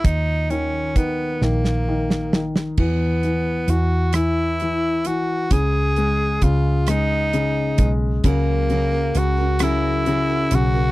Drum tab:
CC |------------|x-----------|------------|------------|
HH |x-x-x-------|--x-x-x-x-x-|x-x-x-x-x-x-|x-x-x-x-x-x-|
SD |------oo-ooo|------r-----|------r-----|----r-r-----|
BD |o---o-------|o-----------|o---o-----o-|o-----------|